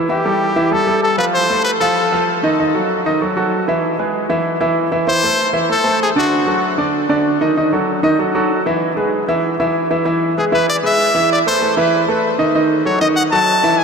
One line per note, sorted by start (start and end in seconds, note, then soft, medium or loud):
0.09 0.22 E3 medium
0.09 0.22 E4 medium
0.09 0.74 G4 medium
0.09 0.23 E5 medium
0.25 0.51 G3 medium
0.25 0.51 G4 medium
0.25 0.51 A4 medium
0.56 0.69 E3 medium
0.56 0.69 E4 medium
0.56 0.69 E5 medium
0.71 0.84 G3 medium
0.71 0.85 G4 medium
0.71 0.85 A4 medium
0.71 1.02 A4 medium
0.87 1.13 G3 medium
0.87 1.13 G4 medium
0.87 1.13 A4 medium
1.03 1.17 A4 medium
1.18 1.44 F3 medium
1.18 1.44 F4 medium
1.18 1.25 B4 loud
1.18 1.44 F5 medium
1.34 1.63 C5 loud
1.49 1.75 A3 medium
1.49 1.75 A4 medium
1.49 1.75 C5 medium
1.64 1.72 B4 medium
1.80 2.06 F3 medium
1.80 2.07 F4 medium
1.80 2.39 A4 medium
1.80 2.07 F5 medium
2.12 2.38 F3 medium
2.12 2.38 F4 medium
2.12 2.38 F5 medium
2.43 2.56 D#3 medium
2.43 2.56 D#4 medium
2.43 2.56 D#5 medium
2.59 2.72 D#3 medium
2.59 2.72 D#4 medium
2.59 2.72 D#5 medium
2.74 3.00 F#3 medium
2.74 3.00 F#4 medium
2.74 3.00 A4 medium
3.06 3.18 D#3 medium
3.06 3.19 D#4 medium
3.06 3.19 D#5 medium
3.21 3.34 F#3 medium
3.21 3.34 F#4 medium
3.21 3.34 A4 medium
3.37 3.62 F#3 medium
3.37 3.62 F#4 medium
3.37 3.62 A4 medium
3.68 3.93 E3 medium
3.68 3.94 E4 medium
3.68 3.94 E5 medium
3.99 4.24 G#3 medium
3.99 4.24 G#4 medium
3.99 4.25 B4 medium
4.29 4.55 E3 medium
4.29 4.55 E4 medium
4.29 4.55 E5 medium
4.61 4.86 E3 medium
4.61 4.86 E4 medium
4.61 4.87 E5 medium
4.91 5.05 E3 medium
4.91 5.05 E4 medium
4.91 5.05 E5 medium
5.07 5.20 E3 medium
5.07 5.20 E4 medium
5.07 5.52 C5 loud
5.07 5.20 E5 medium
5.23 5.49 A3 medium
5.23 5.49 A4 medium
5.23 5.49 C5 medium
5.53 5.66 E3 medium
5.53 5.67 E4 medium
5.53 5.67 E5 medium
5.69 5.82 A3 medium
5.69 5.82 A4 medium
5.69 6.00 A4 medium
5.69 5.82 C5 medium
5.84 6.10 A3 medium
5.84 6.10 A4 medium
5.84 6.10 C5 medium
6.03 6.09 G#4 medium
6.16 6.42 D3 medium
6.16 6.42 D4 medium
6.16 6.75 F#4 medium
6.16 6.42 D5 medium
6.46 6.73 F#3 medium
6.46 6.73 F#4 medium
6.46 6.73 A4 medium
6.78 7.04 D3 medium
6.78 7.04 D4 medium
6.78 7.04 D5 medium
7.09 7.35 D3 medium
7.09 7.35 D4 medium
7.09 7.35 D5 medium
7.41 7.54 D#3 medium
7.41 7.54 D#4 medium
7.41 7.54 D#5 medium
7.57 7.70 D#3 medium
7.57 7.70 D#4 medium
7.57 7.70 D#5 medium
7.72 7.98 F#3 medium
7.72 7.98 F#4 medium
7.72 7.98 A4 medium
8.03 8.16 D#3 medium
8.03 8.16 D#4 medium
8.03 8.16 D#5 medium
8.19 8.32 F#3 medium
8.19 8.32 F#4 medium
8.19 8.32 A4 medium
8.35 8.60 F#3 medium
8.35 8.60 F#4 medium
8.35 8.61 A4 medium
8.66 8.91 E3 medium
8.66 8.92 E4 medium
8.66 8.92 E5 medium
8.96 9.22 G#3 medium
8.96 9.22 G#4 medium
8.96 9.22 B4 medium
9.28 9.54 E3 medium
9.28 9.54 E4 medium
9.28 9.54 E5 medium
9.60 9.85 E3 medium
9.60 9.85 E4 medium
9.60 9.85 E5 medium
9.91 10.03 E3 medium
9.91 10.03 E4 medium
9.91 10.03 E5 medium
10.05 10.31 E3 medium
10.05 10.31 E4 medium
10.05 10.31 E5 medium
10.37 10.50 G#3 medium
10.37 10.50 G#4 medium
10.37 10.45 G#4 medium
10.37 10.50 B4 medium
10.52 10.78 E3 medium
10.52 10.78 E4 medium
10.52 10.67 B4 medium
10.52 10.78 E5 medium
10.70 10.76 D5 loud
10.83 11.09 G#3 medium
10.83 11.09 G#4 medium
10.83 11.09 B4 medium
10.83 11.28 E5 loud
11.14 11.40 E3 medium
11.14 11.40 E4 medium
11.14 11.41 E5 medium
11.33 11.39 D5 medium
11.46 11.59 A3 medium
11.46 11.59 A4 medium
11.46 11.59 B4 medium
11.46 11.76 C5 medium
11.62 11.74 A3 medium
11.62 11.74 A4 medium
11.62 11.75 B4 medium
11.77 12.02 E3 medium
11.77 12.03 E4 medium
11.77 12.06 B4 medium
11.77 12.03 E5 medium
12.08 12.34 A3 medium
12.08 12.34 A4 medium
12.08 12.34 B4 medium
12.38 12.51 D#3 medium
12.38 12.52 D#4 medium
12.38 12.52 D#5 medium
12.55 12.80 D#3 medium
12.55 12.81 D#4 medium
12.55 12.81 D#5 medium
12.85 12.98 F#3 medium
12.85 12.99 F#4 medium
12.85 12.99 A4 medium
12.85 13.00 C#5 medium
13.01 13.27 D#3 medium
13.01 13.27 D#4 medium
13.01 13.08 D#5 medium
13.01 13.27 D#5 medium
13.16 13.23 F#5 loud
13.31 13.58 F#3 medium
13.31 13.58 F#4 medium
13.31 13.58 A4 medium
13.31 13.79 A5 loud
13.64 13.84 E3 medium
13.64 13.84 E4 medium
13.64 13.84 E5 medium
13.78 13.84 G#5 loud